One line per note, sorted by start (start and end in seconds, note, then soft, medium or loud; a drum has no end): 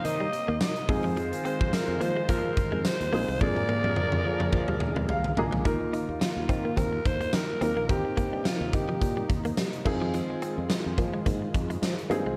0.00 0.87 C3 medium
0.00 0.57 G3 medium
0.00 0.84 A#3 medium
0.00 0.91 A#3 medium
0.00 0.89 C4 medium
0.00 0.57 D#4 medium
0.00 0.87 D#4 loud
0.00 0.89 D#4 medium
0.00 0.90 G4 medium
0.00 0.90 A#4 medium
0.00 0.57 C5 medium
0.04 0.26 D#3 loud
0.04 0.60 D#5 loud
0.04 closed hi-hat loud
0.20 0.31 G3 medium
0.33 muted clean electric guitar stroke soft
0.33 closed hi-hat medium
0.48 0.58 D#2 medium
0.48 0.59 A#3 medium
0.60 0.74 G3 medium
0.60 1.13 D#5 medium
0.60 snare loud
0.60 closed hi-hat loud
0.60 tambourine medium
0.76 closed hi-hat medium
0.89 1.31 F2 loud
0.89 3.39 D#3 medium
0.89 1.86 G#3 medium
0.89 3.09 G#3 medium
0.89 3.39 G#3 medium
0.89 1.86 C4 medium
0.89 1.86 D#4 medium
0.89 3.09 F4 medium
0.89 3.39 F4 medium
0.89 1.86 F4 medium
0.89 1.87 G#4 medium
0.89 3.09 C5 medium
0.89 muted clean electric guitar stroke soft
0.89 kick loud
0.89 open hi-hat medium
1.04 1.15 F3 medium
1.17 1.30 F3 loud
1.17 closed hi-hat medium
1.32 muted clean electric guitar stroke soft
1.32 closed hi-hat medium
1.45 1.58 C4 medium
1.45 1.75 C5 medium
1.45 closed hi-hat medium
1.61 1.70 F2 loud
1.61 kick loud
1.73 2.03 A#4 medium
1.73 muted clean electric guitar stroke soft
1.73 snare loud
1.73 closed hi-hat medium
1.73 tambourine medium
1.88 1.98 F2 medium
2.01 2.22 F3 loud
2.01 2.14 A#3 medium
2.01 2.29 C5 loud
2.01 closed hi-hat medium
2.16 2.27 G#3 medium
2.28 2.50 F3 loud
2.28 2.42 A#3 medium
2.28 2.87 A#4 loud
2.28 kick loud
2.28 closed hi-hat loud
2.44 muted clean electric guitar stroke soft
2.57 kick loud
2.57 closed hi-hat medium
2.72 2.82 F2 medium
2.72 2.83 G#3 medium
2.85 3.42 C5 loud
2.85 muted clean electric guitar stroke soft
2.85 snare loud
2.85 closed hi-hat loud
2.85 tambourine medium
3.00 3.10 D#2 medium
3.00 closed hi-hat medium
3.13 3.25 A#1 loud
3.13 3.38 G#3 medium
3.13 3.26 A#3 medium
3.13 3.38 C4 medium
3.13 3.38 D#4 medium
3.13 3.38 F4 medium
3.13 3.38 G#4 medium
3.13 open hi-hat medium
3.28 3.38 C2 medium
3.28 3.39 G#3 medium
3.41 3.62 F2 loud
3.41 5.63 D3 medium
3.41 5.33 F3 medium
3.41 4.39 G#3 medium
3.41 5.63 A#3 medium
3.41 4.39 A#3 medium
3.41 5.33 D4 medium
3.41 4.39 D4 medium
3.41 4.39 F4 medium
3.41 5.63 G#4 loud
3.41 4.39 G#4 medium
3.41 5.33 A#4 loud
3.41 5.09 D5 loud
3.41 kick loud
3.41 high tom medium
3.56 muted clean electric guitar stroke soft
3.56 high tom medium
3.69 3.82 A#3 medium
3.69 high tom medium
3.84 3.94 F2 loud
3.84 3.95 G3 medium
3.84 high tom medium
3.96 4.10 F3 medium
3.96 mid tom medium
4.12 4.22 F2 loud
4.12 mid tom medium
4.25 4.46 F3 medium
4.25 muted clean electric guitar stroke soft
4.40 4.51 F3 medium
4.40 mid tom medium
4.53 4.74 F3 loud
4.53 kick loud
4.53 mid tom medium
4.68 4.79 G3 medium
4.68 mid tom medium
4.80 muted clean electric guitar stroke soft
4.80 mid tom loud
4.96 5.06 F2 medium
4.96 5.07 G#3 medium
4.96 mid tom medium
5.09 5.22 G3 medium
5.09 5.36 F5 medium
5.09 floor tom loud
5.24 floor tom loud
5.37 5.58 A#1 medium
5.37 5.62 G#3 medium
5.37 5.62 A#3 medium
5.37 5.62 D4 medium
5.37 5.62 F4 medium
5.37 5.62 G#4 loud
5.37 5.64 A#5 medium
5.37 muted clean electric guitar stroke soft
5.37 floor tom loud
5.52 5.63 F3 medium
5.52 floor tom loud
5.65 5.77 D#2 loud
5.65 7.87 D#3 medium
5.65 6.63 A#3 medium
5.65 7.87 A#3 medium
5.65 6.63 D#4 medium
5.65 5.78 D#4 medium
5.65 7.87 F4 medium
5.65 6.63 F4 medium
5.65 6.63 A#4 loud
5.65 kick loud
5.65 closed hi-hat medium
5.81 muted clean electric guitar stroke soft
5.93 6.06 D#4 medium
5.93 closed hi-hat medium
6.09 6.18 D#2 medium
6.21 6.79 F4 medium
6.21 muted clean electric guitar stroke soft
6.21 snare loud
6.21 closed hi-hat medium
6.21 tambourine medium
6.37 6.46 D#2 medium
6.49 6.70 D#3 loud
6.49 6.62 C4 medium
6.49 kick loud
6.49 closed hi-hat medium
6.65 6.76 A#3 medium
6.77 6.98 D#2 medium
6.77 6.90 C4 medium
6.77 7.08 A#4 loud
6.77 kick loud
6.77 closed hi-hat loud
6.93 muted clean electric guitar stroke soft
7.05 7.27 D#2 medium
7.05 7.36 C5 loud
7.05 kick loud
7.05 closed hi-hat medium
7.21 7.31 A#3 medium
7.21 closed hi-hat medium
7.33 7.45 D#3 loud
7.33 7.90 A#4 loud
7.33 muted clean electric guitar stroke soft
7.33 snare loud
7.33 closed hi-hat loud
7.33 tambourine medium
7.61 7.73 D#2 medium
7.61 7.86 A#3 medium
7.61 7.74 C4 medium
7.61 7.86 D#4 medium
7.61 7.86 F4 medium
7.61 7.87 A#4 medium
7.61 closed hi-hat medium
7.76 7.86 A#1 medium
7.76 7.88 A#3 medium
7.89 8.01 D#2 loud
7.89 9.84 C3 medium
7.89 9.84 A#3 medium
7.89 8.87 C4 medium
7.89 9.84 D#4 medium
7.89 8.87 D#4 medium
7.89 8.87 G4 medium
7.89 8.48 G4 medium
7.89 8.88 A#4 medium
7.89 kick loud
7.89 closed hi-hat medium
8.05 muted clean electric guitar stroke soft
8.17 8.30 A#3 medium
8.17 kick medium
8.17 closed hi-hat medium
8.33 8.42 G2 medium
8.33 8.44 G3 medium
8.45 8.59 F3 medium
8.45 8.77 F4 medium
8.45 snare loud
8.45 closed hi-hat medium
8.45 tambourine medium
8.61 8.70 D#2 loud
8.73 8.95 D#3 loud
8.73 9.31 G4 medium
8.73 muted clean electric guitar stroke soft
8.73 kick loud
8.73 closed hi-hat medium
8.89 9.00 F3 medium
9.01 9.23 A#2 loud
9.01 kick loud
9.01 closed hi-hat loud
9.17 9.28 G3 medium
9.29 9.51 D#2 medium
9.29 muted clean electric guitar stroke soft
9.29 kick loud
9.29 closed hi-hat medium
9.45 9.56 A#3 medium
9.45 closed hi-hat medium
9.57 9.71 G3 medium
9.57 snare loud
9.57 closed hi-hat loud
9.57 tambourine medium
9.73 closed hi-hat medium
9.85 10.18 F2 loud
9.85 12.36 D#3 medium
9.85 12.36 G#3 medium
9.85 10.83 C4 medium
9.85 10.83 D#4 medium
9.85 10.84 F4 medium
9.85 12.36 F4 medium
9.85 10.84 G#4 loud
9.85 muted clean electric guitar stroke soft
9.85 kick loud
9.85 crash medium
10.02 10.12 F3 medium
10.14 10.27 F3 medium
10.14 closed hi-hat medium
10.30 muted clean electric guitar stroke soft
10.42 10.55 C4 medium
10.42 closed hi-hat medium
10.58 10.67 F2 medium
10.70 muted clean electric guitar stroke soft
10.70 snare loud
10.70 closed hi-hat medium
10.70 tambourine medium
10.86 10.95 F2 medium
10.98 11.19 F3 medium
10.98 11.11 A#3 medium
10.98 kick loud
10.98 closed hi-hat medium
11.14 11.24 G#3 medium
11.26 11.47 G#2 medium
11.26 11.39 A#3 medium
11.26 kick loud
11.26 closed hi-hat loud
11.42 muted clean electric guitar stroke soft
11.54 11.75 F2 medium
11.54 kick loud
11.54 closed hi-hat medium
11.70 11.81 G#3 medium
11.70 closed hi-hat medium
11.82 11.94 F3 loud
11.82 muted clean electric guitar stroke soft
11.82 snare loud
11.82 closed hi-hat loud
11.82 tambourine medium
11.98 closed hi-hat medium
12.10 12.22 G2 medium
12.10 12.24 A#3 medium
12.10 12.34 C4 medium
12.10 12.35 D#4 medium
12.10 12.35 F4 medium
12.10 12.35 G#4 loud
12.10 closed hi-hat medium
12.26 12.35 C2 medium
12.26 12.37 G#3 medium